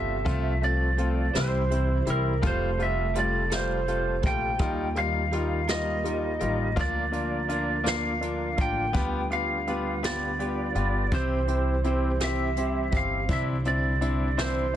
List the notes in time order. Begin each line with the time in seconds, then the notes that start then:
Already playing: G1 C3 G3 A3 C4 F4 G4 A4 E5
0.25 C2 C3 F3 A3 C4 F4 A4, kick, closed hi-hat
0.61 A3 C4 F4 A4 D5, closed hi-hat
0.97 A3 C4 F4 A4, closed hi-hat
1.34 C2 C3 E3 G3 C4 E4 C5, snare, closed hi-hat
1.69 G3 C4 E4 C5, closed hi-hat
2.05 C2 G3 C4 E4 C5, closed hi-hat
2.10 A#4
2.42 F1 F3 G3 A3 C4 F4 A4, kick, closed hi-hat
2.47 C5
2.78 G3 A3 C4 F4 A4, closed hi-hat
2.83 E5
3.14 G3 A3 C4 F4 A4, closed hi-hat
3.19 D5
3.50 F3 G3 A3 C4 F4 A4, snare, closed hi-hat
3.55 C5
3.86 G3 A3 C4 F4 A4, closed hi-hat
4.22 A#1 G3 A3 C4 F4 A4, kick, closed hi-hat
4.27 G5
4.59 D#2 D#3 G3 A#3 D#4 F4 A#4, kick, closed hi-hat
4.95 G3 D#4 F4 A#4 F5, closed hi-hat
5.31 G3 D#4 F4 A#4, closed hi-hat
5.68 D#3 G3 D#4 F4 A#4 D#5, snare, closed hi-hat
6.03 G3 D#4 F4 A#4, closed hi-hat
6.39 A1 G3 D#4 F4 A#4, closed hi-hat
6.76 D2 D3 F3 A#3 D4 F4 A#4, kick, closed hi-hat
6.81 D5
7.11 A#3 D4 F4 A#4, closed hi-hat
7.16 D4
7.48 A#3 D4 F4 A#4, closed hi-hat
7.84 D3 A#3 D4 F4 A#4, snare, closed hi-hat
7.89 F5
8.21 A#3 D4 F4 A#4, closed hi-hat
8.57 A1 A#3 D4 F4 A#4, kick, closed hi-hat
8.61 G5
8.93 D2 D3 G3 B3 D4 F4 G4 B4, kick, closed hi-hat
9.30 B3 D4 F4 G4 B4 F5, closed hi-hat
9.67 G3 B3 D4 F4 G4 B4, closed hi-hat
10.03 D3 G3 B3 D4 F4 G4 B4 D5, snare, closed hi-hat
10.39 G3 B3 D4 F4 G4 B4, closed hi-hat
10.75 G1 B3 D4 F4 G4 B4, closed hi-hat
11.10 C2 C3 E3 G3 C4 E4 G4, kick, closed hi-hat
11.14 C5
11.47 G3 C4 E4 G4 C5, closed hi-hat
11.84 G3 C4 E4 G4 C5, closed hi-hat
12.20 C3 E3 G3 C4 E4 G4 C5 E5, snare, closed hi-hat
12.56 G3 C4 E4 G4 C5, closed hi-hat
12.92 G1 G3 C4 E4 G4 C5, kick, closed hi-hat
12.97 F5
13.28 C2 C3 D3 E3 G3 C4 D4 E4 C5, kick, closed hi-hat
13.33 E5
13.64 G3 C4 D4 E4 C5 D5, closed hi-hat
14.01 G3 C4 D4 E4 C5, closed hi-hat
14.37 C3 E3 G3 C4 D4 E4 C5, snare, closed hi-hat
14.73 C4